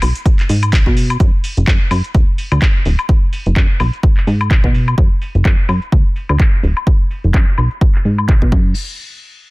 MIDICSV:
0, 0, Header, 1, 3, 480
1, 0, Start_track
1, 0, Tempo, 472441
1, 1220, Time_signature, 4, 2, 24, 8
1, 9655, End_track
2, 0, Start_track
2, 0, Title_t, "Analog synth bass"
2, 0, Program_c, 0, 38
2, 23, Note_on_c, 0, 35, 80
2, 133, Note_off_c, 0, 35, 0
2, 502, Note_on_c, 0, 44, 86
2, 739, Note_on_c, 0, 35, 97
2, 754, Note_off_c, 0, 44, 0
2, 850, Note_off_c, 0, 35, 0
2, 877, Note_on_c, 0, 47, 94
2, 1190, Note_off_c, 0, 47, 0
2, 1220, Note_on_c, 0, 42, 102
2, 1331, Note_off_c, 0, 42, 0
2, 1597, Note_on_c, 0, 30, 85
2, 1681, Note_off_c, 0, 30, 0
2, 1701, Note_on_c, 0, 42, 97
2, 1811, Note_off_c, 0, 42, 0
2, 1940, Note_on_c, 0, 42, 76
2, 2051, Note_off_c, 0, 42, 0
2, 2179, Note_on_c, 0, 38, 77
2, 2290, Note_off_c, 0, 38, 0
2, 2557, Note_on_c, 0, 38, 90
2, 2641, Note_off_c, 0, 38, 0
2, 2902, Note_on_c, 0, 26, 106
2, 3012, Note_off_c, 0, 26, 0
2, 3518, Note_on_c, 0, 30, 89
2, 3602, Note_off_c, 0, 30, 0
2, 3618, Note_on_c, 0, 42, 102
2, 3730, Note_off_c, 0, 42, 0
2, 3862, Note_on_c, 0, 35, 76
2, 3972, Note_off_c, 0, 35, 0
2, 4340, Note_on_c, 0, 44, 85
2, 4579, Note_on_c, 0, 35, 94
2, 4594, Note_off_c, 0, 44, 0
2, 4690, Note_off_c, 0, 35, 0
2, 4714, Note_on_c, 0, 47, 93
2, 5028, Note_off_c, 0, 47, 0
2, 5058, Note_on_c, 0, 42, 99
2, 5170, Note_off_c, 0, 42, 0
2, 5434, Note_on_c, 0, 30, 84
2, 5520, Note_off_c, 0, 30, 0
2, 5538, Note_on_c, 0, 42, 94
2, 5650, Note_off_c, 0, 42, 0
2, 5778, Note_on_c, 0, 42, 76
2, 5890, Note_off_c, 0, 42, 0
2, 6018, Note_on_c, 0, 38, 77
2, 6130, Note_off_c, 0, 38, 0
2, 6394, Note_on_c, 0, 38, 92
2, 6480, Note_off_c, 0, 38, 0
2, 6736, Note_on_c, 0, 26, 102
2, 6849, Note_off_c, 0, 26, 0
2, 7358, Note_on_c, 0, 30, 89
2, 7442, Note_off_c, 0, 30, 0
2, 7459, Note_on_c, 0, 42, 92
2, 7570, Note_off_c, 0, 42, 0
2, 7701, Note_on_c, 0, 35, 80
2, 7811, Note_off_c, 0, 35, 0
2, 8179, Note_on_c, 0, 44, 85
2, 8417, Note_on_c, 0, 35, 97
2, 8432, Note_off_c, 0, 44, 0
2, 8529, Note_off_c, 0, 35, 0
2, 8553, Note_on_c, 0, 47, 91
2, 8652, Note_off_c, 0, 47, 0
2, 8658, Note_on_c, 0, 42, 100
2, 8882, Note_off_c, 0, 42, 0
2, 9655, End_track
3, 0, Start_track
3, 0, Title_t, "Drums"
3, 19, Note_on_c, 9, 46, 97
3, 19, Note_on_c, 9, 76, 90
3, 23, Note_on_c, 9, 82, 78
3, 121, Note_off_c, 9, 46, 0
3, 121, Note_off_c, 9, 76, 0
3, 125, Note_off_c, 9, 82, 0
3, 157, Note_on_c, 9, 42, 52
3, 161, Note_on_c, 9, 82, 45
3, 259, Note_off_c, 9, 42, 0
3, 260, Note_on_c, 9, 36, 122
3, 263, Note_off_c, 9, 82, 0
3, 263, Note_on_c, 9, 42, 78
3, 267, Note_on_c, 9, 82, 31
3, 361, Note_off_c, 9, 36, 0
3, 364, Note_off_c, 9, 42, 0
3, 368, Note_off_c, 9, 82, 0
3, 399, Note_on_c, 9, 42, 32
3, 402, Note_on_c, 9, 39, 33
3, 500, Note_off_c, 9, 42, 0
3, 502, Note_on_c, 9, 46, 108
3, 504, Note_off_c, 9, 39, 0
3, 506, Note_on_c, 9, 82, 76
3, 603, Note_off_c, 9, 46, 0
3, 607, Note_off_c, 9, 82, 0
3, 637, Note_on_c, 9, 42, 49
3, 637, Note_on_c, 9, 76, 66
3, 642, Note_on_c, 9, 82, 43
3, 739, Note_off_c, 9, 42, 0
3, 739, Note_off_c, 9, 76, 0
3, 740, Note_on_c, 9, 36, 120
3, 743, Note_off_c, 9, 82, 0
3, 745, Note_on_c, 9, 42, 76
3, 748, Note_on_c, 9, 39, 110
3, 749, Note_on_c, 9, 82, 31
3, 841, Note_off_c, 9, 36, 0
3, 846, Note_off_c, 9, 42, 0
3, 850, Note_off_c, 9, 39, 0
3, 850, Note_off_c, 9, 82, 0
3, 876, Note_on_c, 9, 36, 61
3, 978, Note_off_c, 9, 36, 0
3, 983, Note_on_c, 9, 46, 98
3, 988, Note_on_c, 9, 82, 81
3, 1085, Note_off_c, 9, 46, 0
3, 1089, Note_off_c, 9, 82, 0
3, 1119, Note_on_c, 9, 42, 47
3, 1119, Note_on_c, 9, 76, 64
3, 1123, Note_on_c, 9, 82, 43
3, 1220, Note_on_c, 9, 36, 114
3, 1221, Note_off_c, 9, 42, 0
3, 1221, Note_off_c, 9, 76, 0
3, 1222, Note_on_c, 9, 42, 76
3, 1225, Note_off_c, 9, 82, 0
3, 1226, Note_on_c, 9, 82, 34
3, 1322, Note_off_c, 9, 36, 0
3, 1324, Note_off_c, 9, 42, 0
3, 1328, Note_off_c, 9, 82, 0
3, 1461, Note_on_c, 9, 46, 107
3, 1466, Note_on_c, 9, 82, 84
3, 1563, Note_off_c, 9, 46, 0
3, 1567, Note_off_c, 9, 82, 0
3, 1597, Note_on_c, 9, 42, 52
3, 1601, Note_on_c, 9, 82, 45
3, 1699, Note_off_c, 9, 42, 0
3, 1700, Note_on_c, 9, 36, 113
3, 1701, Note_on_c, 9, 42, 80
3, 1703, Note_off_c, 9, 82, 0
3, 1704, Note_on_c, 9, 39, 122
3, 1705, Note_on_c, 9, 82, 34
3, 1802, Note_off_c, 9, 36, 0
3, 1802, Note_off_c, 9, 42, 0
3, 1806, Note_off_c, 9, 39, 0
3, 1807, Note_off_c, 9, 82, 0
3, 1939, Note_on_c, 9, 46, 94
3, 1939, Note_on_c, 9, 76, 85
3, 1944, Note_on_c, 9, 82, 80
3, 2041, Note_off_c, 9, 46, 0
3, 2041, Note_off_c, 9, 76, 0
3, 2045, Note_off_c, 9, 82, 0
3, 2076, Note_on_c, 9, 42, 49
3, 2080, Note_on_c, 9, 82, 47
3, 2177, Note_off_c, 9, 42, 0
3, 2180, Note_on_c, 9, 36, 121
3, 2181, Note_on_c, 9, 42, 77
3, 2182, Note_off_c, 9, 82, 0
3, 2185, Note_on_c, 9, 82, 33
3, 2282, Note_off_c, 9, 36, 0
3, 2283, Note_off_c, 9, 42, 0
3, 2287, Note_off_c, 9, 82, 0
3, 2420, Note_on_c, 9, 46, 110
3, 2424, Note_on_c, 9, 82, 77
3, 2522, Note_off_c, 9, 46, 0
3, 2526, Note_off_c, 9, 82, 0
3, 2557, Note_on_c, 9, 42, 51
3, 2557, Note_on_c, 9, 76, 68
3, 2561, Note_on_c, 9, 82, 44
3, 2659, Note_off_c, 9, 42, 0
3, 2659, Note_off_c, 9, 76, 0
3, 2660, Note_on_c, 9, 36, 118
3, 2661, Note_on_c, 9, 42, 72
3, 2663, Note_off_c, 9, 82, 0
3, 2664, Note_on_c, 9, 39, 112
3, 2665, Note_on_c, 9, 82, 35
3, 2761, Note_off_c, 9, 36, 0
3, 2762, Note_off_c, 9, 42, 0
3, 2766, Note_off_c, 9, 39, 0
3, 2766, Note_off_c, 9, 82, 0
3, 2900, Note_on_c, 9, 46, 100
3, 2904, Note_on_c, 9, 82, 80
3, 3001, Note_off_c, 9, 46, 0
3, 3006, Note_off_c, 9, 82, 0
3, 3036, Note_on_c, 9, 42, 47
3, 3036, Note_on_c, 9, 76, 62
3, 3040, Note_on_c, 9, 82, 44
3, 3138, Note_off_c, 9, 42, 0
3, 3138, Note_off_c, 9, 76, 0
3, 3139, Note_on_c, 9, 36, 110
3, 3140, Note_on_c, 9, 42, 79
3, 3142, Note_off_c, 9, 82, 0
3, 3144, Note_on_c, 9, 82, 35
3, 3241, Note_off_c, 9, 36, 0
3, 3242, Note_off_c, 9, 42, 0
3, 3246, Note_off_c, 9, 82, 0
3, 3380, Note_on_c, 9, 46, 109
3, 3384, Note_on_c, 9, 82, 88
3, 3482, Note_off_c, 9, 46, 0
3, 3486, Note_off_c, 9, 82, 0
3, 3515, Note_on_c, 9, 42, 53
3, 3520, Note_on_c, 9, 82, 48
3, 3617, Note_off_c, 9, 42, 0
3, 3619, Note_on_c, 9, 36, 113
3, 3621, Note_off_c, 9, 82, 0
3, 3621, Note_on_c, 9, 42, 78
3, 3624, Note_on_c, 9, 39, 113
3, 3720, Note_off_c, 9, 36, 0
3, 3722, Note_off_c, 9, 42, 0
3, 3726, Note_off_c, 9, 39, 0
3, 3860, Note_on_c, 9, 46, 93
3, 3860, Note_on_c, 9, 76, 84
3, 3864, Note_on_c, 9, 82, 86
3, 3961, Note_off_c, 9, 46, 0
3, 3961, Note_off_c, 9, 76, 0
3, 3965, Note_off_c, 9, 82, 0
3, 3996, Note_on_c, 9, 42, 55
3, 4000, Note_on_c, 9, 82, 49
3, 4098, Note_off_c, 9, 42, 0
3, 4098, Note_on_c, 9, 36, 119
3, 4102, Note_off_c, 9, 82, 0
3, 4102, Note_on_c, 9, 42, 78
3, 4106, Note_on_c, 9, 82, 35
3, 4199, Note_off_c, 9, 36, 0
3, 4203, Note_off_c, 9, 42, 0
3, 4207, Note_off_c, 9, 82, 0
3, 4240, Note_on_c, 9, 39, 33
3, 4341, Note_off_c, 9, 39, 0
3, 4341, Note_on_c, 9, 46, 106
3, 4345, Note_on_c, 9, 82, 83
3, 4442, Note_off_c, 9, 46, 0
3, 4446, Note_off_c, 9, 82, 0
3, 4478, Note_on_c, 9, 42, 50
3, 4478, Note_on_c, 9, 76, 67
3, 4482, Note_on_c, 9, 82, 45
3, 4578, Note_on_c, 9, 36, 117
3, 4580, Note_off_c, 9, 42, 0
3, 4580, Note_off_c, 9, 76, 0
3, 4582, Note_on_c, 9, 42, 78
3, 4584, Note_off_c, 9, 82, 0
3, 4586, Note_on_c, 9, 39, 109
3, 4679, Note_off_c, 9, 36, 0
3, 4684, Note_off_c, 9, 42, 0
3, 4687, Note_off_c, 9, 39, 0
3, 4713, Note_on_c, 9, 36, 57
3, 4814, Note_off_c, 9, 36, 0
3, 4821, Note_on_c, 9, 46, 92
3, 4825, Note_on_c, 9, 82, 88
3, 4923, Note_off_c, 9, 46, 0
3, 4927, Note_off_c, 9, 82, 0
3, 4957, Note_on_c, 9, 42, 52
3, 4957, Note_on_c, 9, 76, 58
3, 4961, Note_on_c, 9, 82, 43
3, 5058, Note_off_c, 9, 42, 0
3, 5058, Note_off_c, 9, 76, 0
3, 5058, Note_on_c, 9, 36, 110
3, 5059, Note_on_c, 9, 42, 83
3, 5063, Note_off_c, 9, 82, 0
3, 5159, Note_off_c, 9, 36, 0
3, 5161, Note_off_c, 9, 42, 0
3, 5299, Note_on_c, 9, 46, 111
3, 5304, Note_on_c, 9, 82, 91
3, 5401, Note_off_c, 9, 46, 0
3, 5405, Note_off_c, 9, 82, 0
3, 5435, Note_on_c, 9, 42, 54
3, 5439, Note_on_c, 9, 82, 50
3, 5536, Note_off_c, 9, 42, 0
3, 5538, Note_on_c, 9, 36, 116
3, 5541, Note_off_c, 9, 82, 0
3, 5543, Note_on_c, 9, 39, 117
3, 5640, Note_off_c, 9, 36, 0
3, 5645, Note_off_c, 9, 39, 0
3, 5779, Note_on_c, 9, 46, 92
3, 5779, Note_on_c, 9, 76, 77
3, 5783, Note_on_c, 9, 82, 85
3, 5881, Note_off_c, 9, 46, 0
3, 5881, Note_off_c, 9, 76, 0
3, 5885, Note_off_c, 9, 82, 0
3, 5914, Note_on_c, 9, 42, 55
3, 5918, Note_on_c, 9, 82, 50
3, 6015, Note_off_c, 9, 42, 0
3, 6018, Note_on_c, 9, 36, 111
3, 6018, Note_on_c, 9, 42, 83
3, 6019, Note_off_c, 9, 82, 0
3, 6120, Note_off_c, 9, 36, 0
3, 6120, Note_off_c, 9, 42, 0
3, 6258, Note_on_c, 9, 46, 99
3, 6262, Note_on_c, 9, 82, 85
3, 6359, Note_off_c, 9, 46, 0
3, 6363, Note_off_c, 9, 82, 0
3, 6394, Note_on_c, 9, 42, 55
3, 6394, Note_on_c, 9, 76, 67
3, 6398, Note_on_c, 9, 82, 47
3, 6495, Note_off_c, 9, 42, 0
3, 6495, Note_off_c, 9, 76, 0
3, 6498, Note_on_c, 9, 36, 118
3, 6500, Note_off_c, 9, 82, 0
3, 6501, Note_on_c, 9, 39, 108
3, 6599, Note_off_c, 9, 36, 0
3, 6603, Note_off_c, 9, 39, 0
3, 6740, Note_on_c, 9, 46, 91
3, 6744, Note_on_c, 9, 82, 85
3, 6841, Note_off_c, 9, 46, 0
3, 6846, Note_off_c, 9, 82, 0
3, 6875, Note_on_c, 9, 42, 52
3, 6875, Note_on_c, 9, 76, 57
3, 6879, Note_on_c, 9, 82, 44
3, 6977, Note_off_c, 9, 42, 0
3, 6977, Note_off_c, 9, 76, 0
3, 6978, Note_on_c, 9, 36, 110
3, 6980, Note_on_c, 9, 42, 82
3, 6981, Note_off_c, 9, 82, 0
3, 7079, Note_off_c, 9, 36, 0
3, 7081, Note_off_c, 9, 42, 0
3, 7221, Note_on_c, 9, 46, 106
3, 7225, Note_on_c, 9, 82, 87
3, 7322, Note_off_c, 9, 46, 0
3, 7326, Note_off_c, 9, 82, 0
3, 7357, Note_on_c, 9, 42, 57
3, 7361, Note_on_c, 9, 82, 46
3, 7458, Note_on_c, 9, 36, 110
3, 7459, Note_off_c, 9, 42, 0
3, 7463, Note_off_c, 9, 82, 0
3, 7465, Note_on_c, 9, 39, 124
3, 7560, Note_off_c, 9, 36, 0
3, 7567, Note_off_c, 9, 39, 0
3, 7597, Note_on_c, 9, 42, 40
3, 7698, Note_on_c, 9, 46, 97
3, 7698, Note_on_c, 9, 76, 76
3, 7699, Note_off_c, 9, 42, 0
3, 7702, Note_on_c, 9, 82, 86
3, 7800, Note_off_c, 9, 46, 0
3, 7800, Note_off_c, 9, 76, 0
3, 7804, Note_off_c, 9, 82, 0
3, 7834, Note_on_c, 9, 42, 57
3, 7838, Note_on_c, 9, 82, 47
3, 7935, Note_off_c, 9, 42, 0
3, 7938, Note_on_c, 9, 36, 116
3, 7939, Note_off_c, 9, 82, 0
3, 8040, Note_off_c, 9, 36, 0
3, 8078, Note_on_c, 9, 39, 36
3, 8177, Note_on_c, 9, 46, 99
3, 8180, Note_off_c, 9, 39, 0
3, 8181, Note_on_c, 9, 82, 83
3, 8278, Note_off_c, 9, 46, 0
3, 8283, Note_off_c, 9, 82, 0
3, 8315, Note_on_c, 9, 42, 55
3, 8315, Note_on_c, 9, 76, 62
3, 8319, Note_on_c, 9, 82, 47
3, 8416, Note_off_c, 9, 42, 0
3, 8416, Note_off_c, 9, 76, 0
3, 8418, Note_on_c, 9, 36, 118
3, 8421, Note_off_c, 9, 82, 0
3, 8425, Note_on_c, 9, 39, 120
3, 8520, Note_off_c, 9, 36, 0
3, 8527, Note_off_c, 9, 39, 0
3, 8554, Note_on_c, 9, 36, 59
3, 8655, Note_off_c, 9, 36, 0
3, 8658, Note_on_c, 9, 36, 110
3, 8661, Note_on_c, 9, 49, 90
3, 8759, Note_off_c, 9, 36, 0
3, 8762, Note_off_c, 9, 49, 0
3, 9655, End_track
0, 0, End_of_file